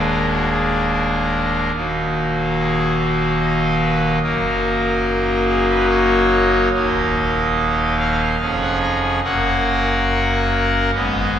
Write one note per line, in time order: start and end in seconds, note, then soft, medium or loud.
0.00 1.71 D#1 medium
0.00 1.71 D#2 medium
0.00 1.71 G#3 soft
0.00 1.70 A#3 soft
0.00 1.71 D4 soft
0.09 0.26 A#4 loud
0.30 0.47 F#4 medium
0.50 0.85 G#4 medium
0.92 1.72 A#4 medium
1.75 4.19 D#1 medium
1.75 4.19 D#2 medium
1.75 4.19 F#3 soft
1.75 4.19 A#3 soft
1.75 4.19 D#4 soft
2.58 2.93 G#4 medium
3.00 3.34 F#4 medium
3.40 3.75 D#5 medium
3.81 4.16 B4 medium
4.23 6.69 F#1 medium
4.23 6.69 F#2 medium
4.23 6.69 F#3 medium
4.23 6.69 A#3 soft
4.23 6.69 D#4 soft
4.23 5.44 A#4 medium
5.48 5.66 G#4 loud
5.69 5.86 B4 loud
5.90 6.70 C#5 loud
6.73 8.36 D#1 medium
6.73 8.36 D#2 medium
6.73 8.36 F#3 medium
6.73 8.36 A#3 medium
6.73 8.36 D#4 medium
6.73 7.95 D#5 medium
7.99 8.59 F5 loud
8.40 9.20 F1 medium
8.40 9.20 F2 medium
8.40 9.20 F3 soft
8.40 9.20 C#4 medium
8.40 9.20 G#4 medium
8.61 8.78 F#5 loud
8.82 8.99 A#5 loud
9.02 9.20 G#5 loud
9.23 10.91 F#1 medium
9.23 10.91 F#2 medium
9.23 10.91 A#3 medium
9.23 10.91 C#4 medium
9.23 10.91 A#4 medium
9.23 10.91 F#5 loud
10.95 11.39 G#1 medium
10.95 11.39 G#2 medium
10.95 11.39 G#3 soft
10.95 11.39 B3 medium
10.95 11.39 B4 medium
10.95 11.31 D#5 loud